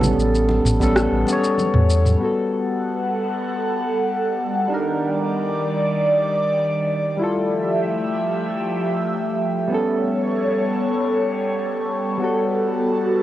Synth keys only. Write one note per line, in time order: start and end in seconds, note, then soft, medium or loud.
0.00 0.75 G3 medium
0.00 0.76 B3 medium
0.00 0.78 C#4 medium
0.00 0.78 A4 loud
0.80 1.24 G3 medium
0.80 1.24 B3 medium
0.80 1.25 C#4 medium
0.80 1.25 A4 loud
1.26 2.16 G3 medium
1.26 2.17 B3 medium
1.30 2.19 C#4 medium
1.30 2.20 C#5 medium
2.17 4.65 G3 medium
2.17 4.67 B3 medium
2.22 4.68 F#4 medium
2.22 4.69 A4 medium
4.68 7.16 G3 medium
4.68 7.17 D4 medium
4.72 7.18 D#4 medium
4.72 7.19 A#4 medium
7.17 9.65 G3 medium
7.17 9.66 E4 medium
7.22 9.67 F4 medium
7.22 9.68 A4 medium
9.68 12.15 G3 medium
9.68 12.16 B3 medium
9.72 12.18 C#4 medium
9.72 12.19 A4 medium
12.18 13.23 G3 medium
12.18 13.23 B3 medium
12.22 13.23 F#4 medium
12.22 13.23 A4 medium